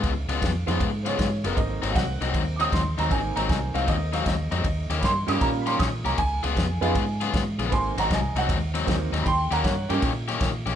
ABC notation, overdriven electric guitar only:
X:1
M:4/4
L:1/8
Q:"Swing" 1/4=156
K:Abmix
V:1 name="Overdriven electric guitar"
[D,A,_CF] [D,A,CF] z [D,A,CF] z [D,A,CF] z [D,A,CF] | z [A,,G,CE] z [A,,G,CE] z [A,,G,CE] z [A,,G,CE] | z [A,,G,CE] z [A,,G,CE] z [A,,G,CE] z [A,,G,CE] | z [E,B,D=G] z [E,B,DG] z [E,B,DG] z [E,B,DG] |
z [D,_CFA] z [D,CFA] z [D,CFA] z [D,CFA] | z [A,,G,CE] z [A,,G,CE] z [A,,G,CE] z [A,,G,CE] | z [E,B,D=G] z [E,B,DG] z [E,B,DG] z [E,B,DG] |]